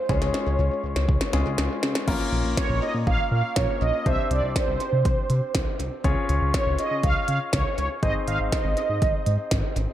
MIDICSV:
0, 0, Header, 1, 5, 480
1, 0, Start_track
1, 0, Tempo, 495868
1, 90, Time_signature, 4, 2, 24, 8
1, 9614, End_track
2, 0, Start_track
2, 0, Title_t, "Analog polysynth"
2, 0, Program_c, 0, 90
2, 0, Note_on_c, 0, 72, 90
2, 93, Note_on_c, 0, 73, 90
2, 105, Note_off_c, 0, 72, 0
2, 1493, Note_off_c, 0, 73, 0
2, 2490, Note_on_c, 0, 73, 96
2, 2730, Note_on_c, 0, 75, 95
2, 2737, Note_off_c, 0, 73, 0
2, 2838, Note_off_c, 0, 75, 0
2, 2971, Note_on_c, 0, 77, 112
2, 3200, Note_off_c, 0, 77, 0
2, 3211, Note_on_c, 0, 77, 102
2, 3451, Note_on_c, 0, 73, 94
2, 3458, Note_off_c, 0, 77, 0
2, 3692, Note_on_c, 0, 75, 99
2, 3698, Note_off_c, 0, 73, 0
2, 3932, Note_on_c, 0, 76, 102
2, 3938, Note_off_c, 0, 75, 0
2, 4173, Note_on_c, 0, 74, 87
2, 4178, Note_off_c, 0, 76, 0
2, 4414, Note_on_c, 0, 72, 87
2, 4419, Note_off_c, 0, 74, 0
2, 5573, Note_off_c, 0, 72, 0
2, 6330, Note_on_c, 0, 73, 93
2, 6571, Note_on_c, 0, 75, 97
2, 6578, Note_off_c, 0, 73, 0
2, 6809, Note_on_c, 0, 77, 113
2, 6818, Note_off_c, 0, 75, 0
2, 7039, Note_off_c, 0, 77, 0
2, 7050, Note_on_c, 0, 77, 105
2, 7158, Note_off_c, 0, 77, 0
2, 7290, Note_on_c, 0, 73, 91
2, 7518, Note_off_c, 0, 73, 0
2, 7529, Note_on_c, 0, 73, 87
2, 7638, Note_off_c, 0, 73, 0
2, 7769, Note_on_c, 0, 75, 102
2, 7877, Note_off_c, 0, 75, 0
2, 8009, Note_on_c, 0, 77, 96
2, 8117, Note_off_c, 0, 77, 0
2, 8250, Note_on_c, 0, 75, 93
2, 9412, Note_off_c, 0, 75, 0
2, 9614, End_track
3, 0, Start_track
3, 0, Title_t, "Grand piano"
3, 0, Program_c, 1, 0
3, 90, Note_on_c, 1, 56, 66
3, 90, Note_on_c, 1, 61, 59
3, 90, Note_on_c, 1, 65, 58
3, 90, Note_on_c, 1, 68, 69
3, 1266, Note_off_c, 1, 56, 0
3, 1266, Note_off_c, 1, 61, 0
3, 1266, Note_off_c, 1, 65, 0
3, 1266, Note_off_c, 1, 68, 0
3, 1290, Note_on_c, 1, 56, 59
3, 1290, Note_on_c, 1, 61, 54
3, 1290, Note_on_c, 1, 65, 53
3, 1290, Note_on_c, 1, 68, 65
3, 1996, Note_off_c, 1, 61, 0
3, 1996, Note_off_c, 1, 65, 0
3, 2010, Note_off_c, 1, 56, 0
3, 2010, Note_off_c, 1, 68, 0
3, 2010, Note_on_c, 1, 58, 79
3, 2011, Note_on_c, 1, 61, 68
3, 2011, Note_on_c, 1, 65, 70
3, 2011, Note_on_c, 1, 70, 85
3, 3422, Note_off_c, 1, 58, 0
3, 3422, Note_off_c, 1, 61, 0
3, 3422, Note_off_c, 1, 65, 0
3, 3422, Note_off_c, 1, 70, 0
3, 3450, Note_on_c, 1, 58, 48
3, 3451, Note_on_c, 1, 61, 44
3, 3451, Note_on_c, 1, 65, 44
3, 3451, Note_on_c, 1, 70, 54
3, 3930, Note_off_c, 1, 58, 0
3, 3930, Note_off_c, 1, 65, 0
3, 3930, Note_off_c, 1, 70, 0
3, 3931, Note_off_c, 1, 61, 0
3, 3931, Note_on_c, 1, 60, 68
3, 3931, Note_on_c, 1, 62, 61
3, 3931, Note_on_c, 1, 67, 60
3, 3931, Note_on_c, 1, 72, 74
3, 5812, Note_off_c, 1, 60, 0
3, 5812, Note_off_c, 1, 62, 0
3, 5812, Note_off_c, 1, 67, 0
3, 5812, Note_off_c, 1, 72, 0
3, 5850, Note_on_c, 1, 61, 79
3, 5850, Note_on_c, 1, 65, 74
3, 5850, Note_on_c, 1, 68, 72
3, 5850, Note_on_c, 1, 73, 85
3, 7732, Note_off_c, 1, 61, 0
3, 7732, Note_off_c, 1, 65, 0
3, 7732, Note_off_c, 1, 68, 0
3, 7732, Note_off_c, 1, 73, 0
3, 7771, Note_on_c, 1, 60, 67
3, 7771, Note_on_c, 1, 63, 60
3, 7771, Note_on_c, 1, 68, 62
3, 7771, Note_on_c, 1, 72, 74
3, 9614, Note_off_c, 1, 60, 0
3, 9614, Note_off_c, 1, 63, 0
3, 9614, Note_off_c, 1, 68, 0
3, 9614, Note_off_c, 1, 72, 0
3, 9614, End_track
4, 0, Start_track
4, 0, Title_t, "Analog synth bass"
4, 0, Program_c, 2, 38
4, 90, Note_on_c, 2, 37, 109
4, 195, Note_off_c, 2, 37, 0
4, 211, Note_on_c, 2, 37, 100
4, 316, Note_off_c, 2, 37, 0
4, 451, Note_on_c, 2, 37, 101
4, 556, Note_off_c, 2, 37, 0
4, 571, Note_on_c, 2, 37, 103
4, 676, Note_off_c, 2, 37, 0
4, 811, Note_on_c, 2, 37, 102
4, 916, Note_off_c, 2, 37, 0
4, 931, Note_on_c, 2, 37, 98
4, 1036, Note_off_c, 2, 37, 0
4, 1052, Note_on_c, 2, 37, 98
4, 1156, Note_off_c, 2, 37, 0
4, 1291, Note_on_c, 2, 37, 100
4, 1396, Note_off_c, 2, 37, 0
4, 1411, Note_on_c, 2, 37, 98
4, 1516, Note_off_c, 2, 37, 0
4, 1531, Note_on_c, 2, 37, 100
4, 1636, Note_off_c, 2, 37, 0
4, 1771, Note_on_c, 2, 49, 99
4, 1876, Note_off_c, 2, 49, 0
4, 2011, Note_on_c, 2, 34, 111
4, 2116, Note_off_c, 2, 34, 0
4, 2250, Note_on_c, 2, 34, 100
4, 2355, Note_off_c, 2, 34, 0
4, 2370, Note_on_c, 2, 34, 92
4, 2476, Note_off_c, 2, 34, 0
4, 2611, Note_on_c, 2, 34, 96
4, 2716, Note_off_c, 2, 34, 0
4, 2851, Note_on_c, 2, 46, 95
4, 2956, Note_off_c, 2, 46, 0
4, 2971, Note_on_c, 2, 34, 100
4, 3076, Note_off_c, 2, 34, 0
4, 3210, Note_on_c, 2, 46, 103
4, 3315, Note_off_c, 2, 46, 0
4, 3452, Note_on_c, 2, 34, 98
4, 3557, Note_off_c, 2, 34, 0
4, 3690, Note_on_c, 2, 34, 96
4, 3795, Note_off_c, 2, 34, 0
4, 3931, Note_on_c, 2, 36, 106
4, 4036, Note_off_c, 2, 36, 0
4, 4170, Note_on_c, 2, 36, 100
4, 4275, Note_off_c, 2, 36, 0
4, 4290, Note_on_c, 2, 36, 86
4, 4395, Note_off_c, 2, 36, 0
4, 4529, Note_on_c, 2, 36, 98
4, 4635, Note_off_c, 2, 36, 0
4, 4769, Note_on_c, 2, 48, 98
4, 4875, Note_off_c, 2, 48, 0
4, 4892, Note_on_c, 2, 36, 102
4, 4996, Note_off_c, 2, 36, 0
4, 5130, Note_on_c, 2, 48, 103
4, 5235, Note_off_c, 2, 48, 0
4, 5372, Note_on_c, 2, 36, 104
4, 5477, Note_off_c, 2, 36, 0
4, 5610, Note_on_c, 2, 36, 98
4, 5715, Note_off_c, 2, 36, 0
4, 5851, Note_on_c, 2, 37, 112
4, 5956, Note_off_c, 2, 37, 0
4, 6091, Note_on_c, 2, 37, 95
4, 6196, Note_off_c, 2, 37, 0
4, 6211, Note_on_c, 2, 37, 94
4, 6316, Note_off_c, 2, 37, 0
4, 6450, Note_on_c, 2, 37, 100
4, 6555, Note_off_c, 2, 37, 0
4, 6690, Note_on_c, 2, 49, 96
4, 6795, Note_off_c, 2, 49, 0
4, 6812, Note_on_c, 2, 37, 108
4, 6916, Note_off_c, 2, 37, 0
4, 7051, Note_on_c, 2, 49, 107
4, 7156, Note_off_c, 2, 49, 0
4, 7292, Note_on_c, 2, 37, 98
4, 7396, Note_off_c, 2, 37, 0
4, 7530, Note_on_c, 2, 37, 98
4, 7635, Note_off_c, 2, 37, 0
4, 7771, Note_on_c, 2, 32, 112
4, 7876, Note_off_c, 2, 32, 0
4, 8010, Note_on_c, 2, 32, 101
4, 8115, Note_off_c, 2, 32, 0
4, 8130, Note_on_c, 2, 32, 100
4, 8235, Note_off_c, 2, 32, 0
4, 8370, Note_on_c, 2, 32, 100
4, 8475, Note_off_c, 2, 32, 0
4, 8610, Note_on_c, 2, 44, 104
4, 8715, Note_off_c, 2, 44, 0
4, 8731, Note_on_c, 2, 32, 96
4, 8836, Note_off_c, 2, 32, 0
4, 8971, Note_on_c, 2, 44, 102
4, 9076, Note_off_c, 2, 44, 0
4, 9213, Note_on_c, 2, 32, 100
4, 9317, Note_off_c, 2, 32, 0
4, 9450, Note_on_c, 2, 32, 96
4, 9555, Note_off_c, 2, 32, 0
4, 9614, End_track
5, 0, Start_track
5, 0, Title_t, "Drums"
5, 90, Note_on_c, 9, 36, 110
5, 90, Note_on_c, 9, 38, 55
5, 187, Note_off_c, 9, 36, 0
5, 187, Note_off_c, 9, 38, 0
5, 210, Note_on_c, 9, 38, 50
5, 307, Note_off_c, 9, 38, 0
5, 330, Note_on_c, 9, 38, 61
5, 427, Note_off_c, 9, 38, 0
5, 930, Note_on_c, 9, 38, 66
5, 1027, Note_off_c, 9, 38, 0
5, 1051, Note_on_c, 9, 36, 93
5, 1148, Note_off_c, 9, 36, 0
5, 1170, Note_on_c, 9, 38, 73
5, 1267, Note_off_c, 9, 38, 0
5, 1290, Note_on_c, 9, 38, 83
5, 1387, Note_off_c, 9, 38, 0
5, 1531, Note_on_c, 9, 38, 91
5, 1627, Note_off_c, 9, 38, 0
5, 1770, Note_on_c, 9, 38, 93
5, 1867, Note_off_c, 9, 38, 0
5, 1890, Note_on_c, 9, 38, 85
5, 1987, Note_off_c, 9, 38, 0
5, 2010, Note_on_c, 9, 49, 94
5, 2011, Note_on_c, 9, 36, 114
5, 2107, Note_off_c, 9, 36, 0
5, 2107, Note_off_c, 9, 49, 0
5, 2492, Note_on_c, 9, 36, 112
5, 2492, Note_on_c, 9, 38, 115
5, 2588, Note_off_c, 9, 36, 0
5, 2589, Note_off_c, 9, 38, 0
5, 2972, Note_on_c, 9, 36, 119
5, 3068, Note_off_c, 9, 36, 0
5, 3448, Note_on_c, 9, 38, 115
5, 3452, Note_on_c, 9, 36, 107
5, 3545, Note_off_c, 9, 38, 0
5, 3549, Note_off_c, 9, 36, 0
5, 3930, Note_on_c, 9, 42, 66
5, 3931, Note_on_c, 9, 36, 115
5, 4027, Note_off_c, 9, 42, 0
5, 4028, Note_off_c, 9, 36, 0
5, 4171, Note_on_c, 9, 42, 78
5, 4268, Note_off_c, 9, 42, 0
5, 4412, Note_on_c, 9, 36, 114
5, 4412, Note_on_c, 9, 38, 108
5, 4412, Note_on_c, 9, 42, 71
5, 4509, Note_off_c, 9, 36, 0
5, 4509, Note_off_c, 9, 38, 0
5, 4509, Note_off_c, 9, 42, 0
5, 4649, Note_on_c, 9, 42, 76
5, 4746, Note_off_c, 9, 42, 0
5, 4890, Note_on_c, 9, 42, 80
5, 4892, Note_on_c, 9, 36, 122
5, 4987, Note_off_c, 9, 42, 0
5, 4989, Note_off_c, 9, 36, 0
5, 5128, Note_on_c, 9, 42, 82
5, 5225, Note_off_c, 9, 42, 0
5, 5369, Note_on_c, 9, 38, 113
5, 5372, Note_on_c, 9, 36, 105
5, 5372, Note_on_c, 9, 42, 78
5, 5465, Note_off_c, 9, 38, 0
5, 5468, Note_off_c, 9, 42, 0
5, 5469, Note_off_c, 9, 36, 0
5, 5612, Note_on_c, 9, 42, 72
5, 5709, Note_off_c, 9, 42, 0
5, 5850, Note_on_c, 9, 42, 69
5, 5851, Note_on_c, 9, 36, 113
5, 5947, Note_off_c, 9, 42, 0
5, 5948, Note_off_c, 9, 36, 0
5, 6090, Note_on_c, 9, 42, 76
5, 6187, Note_off_c, 9, 42, 0
5, 6331, Note_on_c, 9, 36, 115
5, 6331, Note_on_c, 9, 42, 70
5, 6332, Note_on_c, 9, 38, 115
5, 6428, Note_off_c, 9, 36, 0
5, 6428, Note_off_c, 9, 42, 0
5, 6429, Note_off_c, 9, 38, 0
5, 6568, Note_on_c, 9, 42, 78
5, 6665, Note_off_c, 9, 42, 0
5, 6809, Note_on_c, 9, 42, 82
5, 6811, Note_on_c, 9, 36, 114
5, 6906, Note_off_c, 9, 42, 0
5, 6908, Note_off_c, 9, 36, 0
5, 7047, Note_on_c, 9, 42, 85
5, 7144, Note_off_c, 9, 42, 0
5, 7288, Note_on_c, 9, 38, 116
5, 7291, Note_on_c, 9, 42, 78
5, 7292, Note_on_c, 9, 36, 106
5, 7385, Note_off_c, 9, 38, 0
5, 7388, Note_off_c, 9, 42, 0
5, 7389, Note_off_c, 9, 36, 0
5, 7531, Note_on_c, 9, 42, 72
5, 7628, Note_off_c, 9, 42, 0
5, 7771, Note_on_c, 9, 36, 111
5, 7771, Note_on_c, 9, 42, 68
5, 7867, Note_off_c, 9, 42, 0
5, 7868, Note_off_c, 9, 36, 0
5, 8011, Note_on_c, 9, 42, 76
5, 8108, Note_off_c, 9, 42, 0
5, 8251, Note_on_c, 9, 42, 69
5, 8252, Note_on_c, 9, 36, 114
5, 8252, Note_on_c, 9, 38, 114
5, 8348, Note_off_c, 9, 36, 0
5, 8348, Note_off_c, 9, 42, 0
5, 8349, Note_off_c, 9, 38, 0
5, 8489, Note_on_c, 9, 42, 80
5, 8585, Note_off_c, 9, 42, 0
5, 8730, Note_on_c, 9, 42, 85
5, 8732, Note_on_c, 9, 36, 121
5, 8827, Note_off_c, 9, 42, 0
5, 8828, Note_off_c, 9, 36, 0
5, 8967, Note_on_c, 9, 42, 82
5, 9064, Note_off_c, 9, 42, 0
5, 9208, Note_on_c, 9, 38, 119
5, 9211, Note_on_c, 9, 42, 77
5, 9212, Note_on_c, 9, 36, 110
5, 9305, Note_off_c, 9, 38, 0
5, 9308, Note_off_c, 9, 42, 0
5, 9309, Note_off_c, 9, 36, 0
5, 9451, Note_on_c, 9, 42, 73
5, 9548, Note_off_c, 9, 42, 0
5, 9614, End_track
0, 0, End_of_file